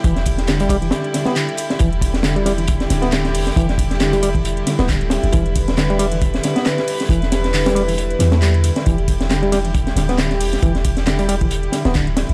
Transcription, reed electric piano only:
X:1
M:4/4
L:1/16
Q:"Swing 16ths" 1/4=136
K:Em
V:1 name="Reed electric piano" clef=bass
E, z3 D, G, G, E, z2 D, B, D, z3 | E, z3 D, G, G, E, z2 D, B, D, z3 | E, z3 D, G, G, E, z2 D, B, D, z3 | E, z3 D, G, G, E, z2 D, B, D, z3 |
E, z3 D, G, G, E, z2 E, A, G, z3 | E, z3 D, G, G, E, z2 D, B, D, z3 | E, z3 D, G, G, E, z2 D, B, D, z3 |]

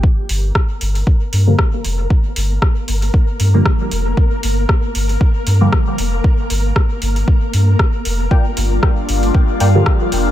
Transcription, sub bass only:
X:1
M:4/4
L:1/8
Q:"Swing 16ths" 1/4=116
K:Gm
V:1 name="Sub bass" clef=bass
z G,,, z G,,, z G,, z F,,, | z G,,, z G,,, z G,, z F,,, | z G,,, z G,,, z G,, z F,,, | z G,,, z G,,, z G,, z F,,, |
z G,,, z G,,, z G,, z F,,, |]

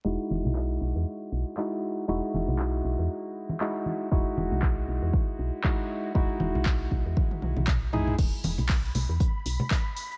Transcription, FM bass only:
X:1
M:4/4
L:1/16
Q:"Swing 16ths" 1/4=118
K:E
V:1 name="FM bass" clef=bass
E,,, z E,,, B,,,3 B,,, E,, z2 B,,, z4 z | E,,, z E,,, B,,,3 B,,, E,, z8 | E,,, z E,,, B,,,3 B,,, E,, z2 B,,, z4 z | E,,, z E,,, B,,,3 B,,, E,, z2 B,,, B,,,4- B,,, |
E,,, z E,,, B,,,3 B,,, E,, z2 B,,, z4 z |]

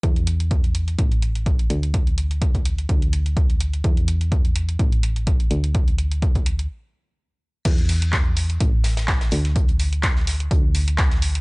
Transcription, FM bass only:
X:1
M:4/4
L:1/8
Q:"Swing 16ths" 1/4=126
K:D
V:1 name="FM bass" clef=bass
E,,4 A,,,3 D,,- | D,,4 D,,4 | E,,4 A,,,3 D,,- | D,,4 z4 |
E,,4 A,,,3 D,,- | D,,4 D,,4 |]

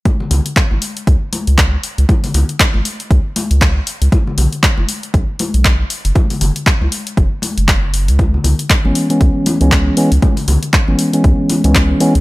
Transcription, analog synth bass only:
X:1
M:4/4
L:1/16
Q:"Swing 16ths" 1/4=118
K:C#m
V:1 name="Analog synth bass" clef=bass
z2 C,, z2 G,,, z2 C,, z2 C,,2 z2 C,, | z2 C,, z2 G,,, z2 C,, z2 C,,2 z2 C,, | z2 B,,, z2 F,,, z2 B,,, z2 B,,,2 z2 F,,, | z2 F,,, z2 C,, z2 F,,, z2 F,,,4 C,,- |
C,, z C,, z2 G,,, z2 C,, z2 C,,2 z2 C,, | z2 C,, z2 G,,, z2 C,, z2 C,,2 z2 C,, |]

